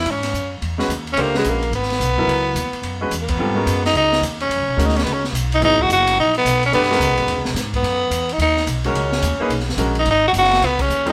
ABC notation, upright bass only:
X:1
M:4/4
L:1/8
Q:"Swing" 1/4=216
K:Dblyd
V:1 name="Upright bass" clef=bass
A,,2 _G,,2 _F,,2 E,,2 | D,,2 B,,,2 A,,,2 _C,,2 | D,,2 E,, z _G,,2 _F,,2 | [K:C#dor] G,,2 F,,2 C,,2 D,,2 |
(3F,, C,, B,,, =D,,2 C,,2 B,,,2 | G,,,2 F,,,2 A,,,2 B,,,2 | F,,2 (3C,, B,,, G,,, (3D,, C,, B,,, G,,2 | F,,2 E,,2 D,,2 B,,,2 |
C,,2 D,, z B,,,2 A,,,2 | G,,,2 F,,,2 C,,2 D,,2 |]